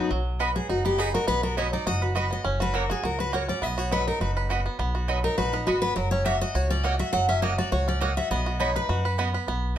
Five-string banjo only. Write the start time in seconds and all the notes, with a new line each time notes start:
Already playing: F#4 B4
0.11 F#3
0.40 B4
0.56 F#4
0.69 D#4
0.85 B3
0.98 D#4
1.14 F#4
1.28 B3
1.43 F#4
1.57 F#3
1.73 D#4
1.87 F#4
2.02 B4
2.16 F#4
2.31 B3
2.45 C#4
2.60 F#4
2.74 F#3
2.90 F#4
3.03 F#4
3.19 F#4
3.33 F#4
3.48 C#4
3.62 B3
3.78 F#4
3.91 F#3
4.07 D#4
4.21 F#4
4.37 B4
4.50 F#4
4.66 B3
4.79 B3
4.95 F#4
5.08 F#3
5.24 D#4
5.38 F#4
5.54 B4
5.67 F#4
5.83 B3
5.96 F#3
6.12 C#4
6.26 F#4
6.42 F#4
6.55 F#4
6.71 C#4
6.84 F#4
7.00 F#4
7.13 F#3
7.29 C#4
7.43 F#4
7.58 F#4
7.72 F#4
7.88 C#4
8.02 F#4
8.17 F#4
8.31 B3
8.46 F#4
8.60 D#4
8.76 B4
8.89 F#4
9.05 B4
9.19 B3
9.34 B4
9.48 B3